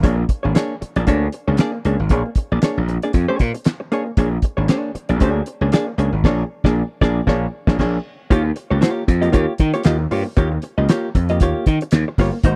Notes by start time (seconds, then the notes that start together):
0.03 A#1 A#3 D4 G#4 C#5, kick, closed hi-hat
0.17 muted hollow-body jazz guitar stroke
0.29 muted hollow-body jazz guitar stroke, kick, closed hi-hat
0.43 G#1 A#3 D4 G#4 C#5
0.55 A#3 D4 G#4 C#5, snare, clap, closed hi-hat
0.81 muted hollow-body jazz guitar stroke, muted slap bass stroke, closed hi-hat
0.96 A#1 A#3 D4 G#4 D5, closed hi-hat
1.07 D2 A#3 D4 G#4 C#5, kick, closed hi-hat
1.32 muted hollow-body jazz guitar stroke, closed hi-hat
1.48 C#2 A#3 D4 G#4 C#5
1.57 A#3 D4 G#4 D5, snare, clap, closed hi-hat
1.74 muted hollow-body jazz guitar stroke
1.85 C#2 A#3 D4 G#4 C#5, closed hi-hat
1.99 G#1, muted hollow-body jazz guitar stroke
2.09 A#1 A#3 D4 G#4 C#5, kick, closed hi-hat
2.25 muted hollow-body jazz guitar stroke
2.35 muted hollow-body jazz guitar stroke, kick, closed hi-hat
2.52 A#1 A#3 D4 G#4 D5
2.62 A#3 D4 G#4 C#5, muted slap bass stroke, snare, clap, closed hi-hat
2.77 A#1
2.88 muted hollow-body jazz guitar stroke, closed hi-hat
3.02 A#3 D4 G#4 D5, closed hi-hat
3.13 F2, muted hollow-body jazz guitar stroke, kick, closed hi-hat
3.28 A#3 D4 G#4 C#5
3.39 A#2, muted hollow-body jazz guitar stroke, kick, closed hi-hat
3.54 muted hollow-body jazz guitar stroke, closed hi-hat
3.64 muted hollow-body jazz guitar stroke, snare, clap, closed hi-hat
3.80 muted hollow-body jazz guitar stroke
3.92 A#3 D4 G#4 C#5, closed hi-hat
4.06 muted hollow-body jazz guitar stroke
4.17 A#1 A#3 D4 G#4 C#5, kick, closed hi-hat
4.32 muted hollow-body jazz guitar stroke
4.42 muted hollow-body jazz guitar stroke, kick, closed hi-hat
4.57 G#1 A#3 D4 G#4 C#5
4.68 A#3 D4 G#4 C#5, snare, clap, closed hi-hat
4.95 muted hollow-body jazz guitar stroke, muted slap bass stroke, closed hi-hat
5.09 A#1 A#3 D4 G#4 D5, closed hi-hat
5.20 D2 A#3 D4 G#4 C#5, kick, closed hi-hat
5.46 muted hollow-body jazz guitar stroke, closed hi-hat
5.61 C#2 A#3 D4 G#4 C#5
5.72 A#3 D4 G#4 D5, snare, clap, closed hi-hat
5.88 muted hollow-body jazz guitar stroke
5.98 C#2 A#3 D4 G#4 C#5, closed hi-hat
6.12 G#1, muted hollow-body jazz guitar stroke
6.24 A#1 A#3 D4 G#4 C#5, kick, snare, crash
6.64 A#1 A#3 D4 G#4 D5, kick, snare
7.01 A#1 A#3 D4 G#4 D5, kick, snare
7.27 A#1 A#3 D4 G#4 C#5, kick, snare
7.67 A#1 A#3 D4 G#4 C#5, kick, snare
7.79 A#1 A#3 D4 G#4 C#5, kick, snare, crash
8.30 D#2 A#3 F4 G4 C#5, kick, closed hi-hat
8.45 muted hollow-body jazz guitar stroke
8.56 muted hollow-body jazz guitar stroke, closed hi-hat
8.70 C#2 A#3 F4 G4 C#5
8.81 A#3 F4 G4 C#5, snare, clap, closed hi-hat
9.07 F2, muted hollow-body jazz guitar stroke, kick, closed hi-hat
9.22 A#3 F4 G4 D#5, closed hi-hat
9.32 D#2 A#3 F4 G4 C#5, kick, closed hi-hat
9.58 D#3, muted hollow-body jazz guitar stroke, kick, closed hi-hat
9.74 A#3 F4 G4 C#5, closed hi-hat
9.84 D#2 A#3 F4 G4 D#5, snare, clap, closed hi-hat
10.00 muted hollow-body jazz guitar stroke
10.11 G2 A#3 F4 G4 C#5, open hi-hat
10.25 muted hollow-body jazz guitar stroke
10.37 D#2 A#3 F4 G4 C#5, kick, closed hi-hat
10.52 muted hollow-body jazz guitar stroke
10.62 muted hollow-body jazz guitar stroke, closed hi-hat
10.78 C#2 A#3 F4 G4 D#5
10.89 A#3 F4 G4 C#5, snare, clap, closed hi-hat
11.15 F2, muted hollow-body jazz guitar stroke, kick, closed hi-hat
11.29 A#3 F4 G4 D#5, closed hi-hat
11.40 D#2 A#3 F4 G4 C#5, kick, closed hi-hat
11.66 D#3, muted hollow-body jazz guitar stroke, kick, closed hi-hat
11.81 muted hollow-body jazz guitar stroke, closed hi-hat
11.91 D#2, muted hollow-body jazz guitar stroke, snare, clap, closed hi-hat
12.08 muted hollow-body jazz guitar stroke
12.18 G1 A#3 F4 G4 C#5, kick, open hi-hat
12.33 muted hollow-body jazz guitar stroke
12.43 G#1 A#3 D#4 F#4 C5, kick, closed hi-hat